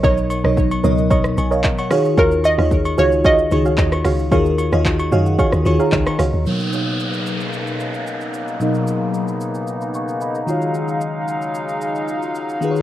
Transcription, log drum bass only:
X:1
M:4/4
L:1/16
Q:1/4=112
K:Cblyd
V:1 name="Log drum bass" clef=bass
=B,,,3 B,,,3 ^C,,4 B,,,2 z4 | E,,3 E,,3 D,,4 D,,2 E,,2 D,,2 | E,,3 E,,3 G,,2 z E,, E,, z D,, z D,, E,, | z16 |
z16 | z16 |]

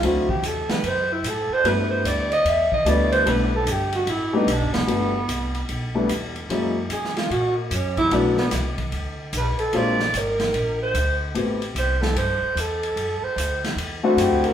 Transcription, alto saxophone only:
X:1
M:4/4
L:1/8
Q:"Swing" 1/4=148
K:G
V:1 name="Alto saxophone"
F G A B c E A c | B c d _e =e _e d c | B A G F E _E D B,- | B,4 z4 |
z2 _A =F ^F ^A, ^C E | D B, z4 B A | d2 _B3 c2 z | z2 c A c2 A2- |
A c2 z2 F G _B |]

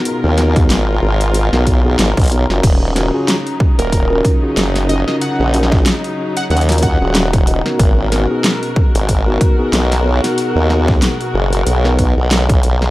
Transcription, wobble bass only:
X:1
M:4/4
L:1/16
Q:"Swing 16ths" 1/4=93
K:Abdor
V:1 name="Wobble bass" clef=bass
z E,,3 A,,,2 A,,,3 C,,3 A,,, C,,2 G,,, | E,,,3 z4 E,,,3 z2 G,,,3 z | z B,,,3 z4 E,,3 E,,,4 z | A,,,3 z4 A,,,3 z2 C,,3 z |
z E,,3 z2 G,,,2 C,,3 C,,4- C,, |]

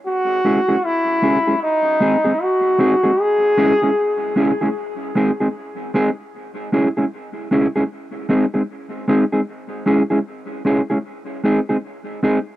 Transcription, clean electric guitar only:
X:1
M:4/4
L:1/16
Q:"Swing 16ths" 1/4=76
K:C#m
V:1 name="Clean electric guitar"
z2 [G,CEG] [G,CEG] z2 [G,CEG] [G,CEG] z2 [G,^B,DG] [G,B,DG] z2 [G,B,DG] [G,B,DG] | z2 [G,CEG] [G,CEG] z2 [G,CEG] [G,CEG] z2 [G,^B,DG] [G,B,DG] z2 [G,B,DG] z | z2 [G,CEG] [G,CEG] z2 [G,CEG] [G,CEG] z2 [G,^B,DG] [G,B,DG] z2 [G,B,DG] [G,B,DG] | z2 [G,CEG] [G,CEG] z2 [G,CEG] [G,CEG] z2 [G,^B,DG] [G,B,DG] z2 [G,B,DG] z |]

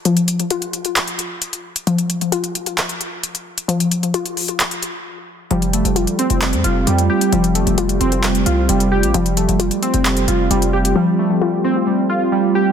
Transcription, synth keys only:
X:1
M:4/4
L:1/8
Q:1/4=132
K:F
V:1 name="Synth keys" clef=bass
z8 | z8 | z8 | G, A, G, C G, F G, G |
G, A, G, C G, F G, G | G, A, G, C G, F G, G | G, A, G, C G, F G, G |]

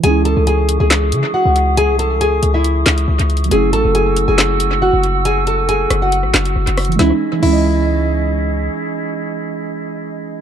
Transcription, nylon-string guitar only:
X:1
M:4/4
L:1/16
Q:1/4=138
K:C#m
V:1 name="Nylon-string guitar"
[Gg]2 [Aa]2 [Gg]3 [Gg]4- [Gg] [Ff]4 | [Gg]2 [Aa]2 [Gg]3 [Ee]8- [Ee] | [Gg]2 [Aa]2 [Gg]3 [Gg]4- [Gg] [Ff]4 | [Gg]2 [Aa]2 [Gg]3 [Ff]8- [Ff] |
E2 z2 E8 z4 | z16 |]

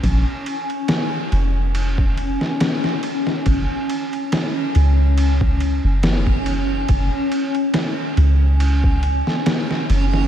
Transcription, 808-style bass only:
X:1
M:4/4
L:1/16
Q:"Swing 16ths" 1/4=70
K:Gblyd
V:1 name="808-style bass" clef=bass
B,,, z4 z F,,,4- F,,, z4 z | G,,, z4 z D,,4- D,, G,,,4- G,,, | G,,, z4 z D,,4- D,, z3 G,,,2 |]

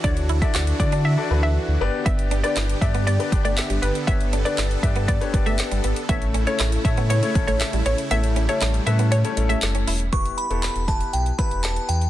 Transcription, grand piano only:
X:1
M:4/4
L:1/16
Q:1/4=119
K:Edor
V:1 name="Grand piano"
[DEFAc]2 z [DEFAd]2 z [DEFAd]2 z [DEFAd] [DEFAB]4 [B,DGBd]2- | [B,DGBd]2 z [B,DGBd]2 z [B,DGBd]2 z [B,DGBd] [B,DGBd]4- [B,DGBd] z | [B,DGBc]2 z [B,DGBd]2 z [B,DGBd]2 z [B,DGBc] [B,DGBd]4- [B,DGBd] z | [A,CEAc]2 z [A,CEAc]2 z [A,CEAc]2 z [A,CEAc] [A,CEAc]4- [A,CEAc] z |
[A,CEAc]2 z [A,CEAe]2 z [A,CEAB]2 z [A,CEAc] [A,CEAc]4- [A,CEAc] z | [B,EGB]2 z [B,EGA]2 z [B,EGB]3 z [B,EGB]4- [B,EGB] z |]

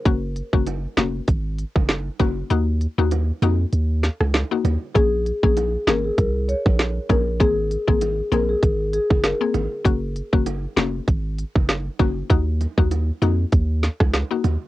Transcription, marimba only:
X:1
M:4/4
L:1/16
Q:"Swing 16ths" 1/4=98
K:Gblyd
V:1 name="Marimba"
z16 | z16 | A2 z A z2 B A B z d z3 B z | A2 z A z2 B A z2 A z B3 z |
z16 | z16 |]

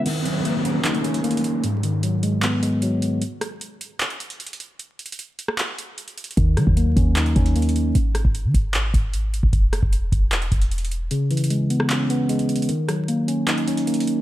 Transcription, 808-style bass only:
X:1
M:4/4
L:1/16
Q:1/4=152
K:Ebphr
V:1 name="808-style bass" clef=bass
z16 | z16 | z16 | z16 |
E,,2 E, E,,3 E,,4 E,,6 | A,,,3 A,,,2 E, A,,,4 A,,,4- A,,, A,,, | =E,,,2 ^F,,, E,,,3 E,,,4 E,,,6 | z16 |
z16 |]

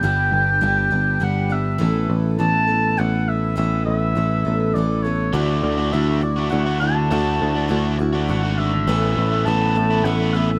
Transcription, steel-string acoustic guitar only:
X:1
M:3/4
L:1/8
Q:1/4=102
K:D
V:1 name="Steel-string acoustic guitar"
[G,,D,G,B,DG]2 [G,B,DG] [G,B,DG] [G,B,DG] [G,B,DG] | [A,,E,A,B,A]2 [E,A,B,A] [A,B,A] [E,A,B,A]2 | [A,,E,A,B,A]2 [E,A,B,A] [A,B,A] [E,A,B,A] [A,B,A] | [D,A,EF]2 [D,A,EF] [A,EF] [D,A,EF] [A,EF] |
[D,A,EF]2 [D,A,EF] [A,EF] [D,A,EF]2 | [A,,E,A,B,A]2 [E,A,B,A] [A,B,A] [E,A,B,A] [A,B,A] |]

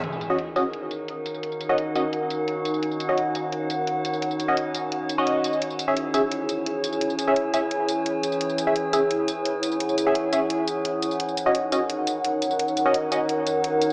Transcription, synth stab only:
X:1
M:4/4
L:1/16
Q:1/4=172
K:Ebphr
V:1 name="Synth stab"
z3 [DGe] z2 [DGe] z8 z | z3 [DGe] z2 [DGe] z8 z | z3 [DGe] z12 | z3 [DGe] z6 z [DGe]4- [DGe] |
z3 [DAf] z2 [DAf] z8 z | z3 [DAf] z2 [DAf] z8 z | z3 [DAf] z2 [DAf] z8 z | z3 [DAf] z2 [DAf] z8 z |
z3 [DGe] z2 [DGe] z8 z | z3 [DGe] z2 [DGe] z8 z |]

